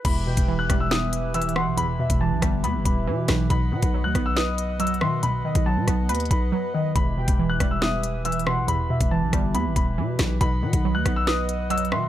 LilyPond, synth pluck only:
\new Staff \with { instrumentName = "Synth pluck" } { \clef bass \time 4/4 \key e \minor \tempo 4 = 139 e,8 b,8 e8 g8 b4 e8 b,8 | e,8 b,8 e8 g8 b4 e8 b,8 | b,8 dis8 fis8 b8 b'4 fis8 dis8 | b,8 dis8 fis8 b8 b'4 fis8 dis8 |
e,8 b,8 e8 g8 b4 e8 b,8 | e,8 b,8 e8 g8 b4 e8 b,8 | b,8 dis8 fis8 b8 b'4 fis8 dis8 | }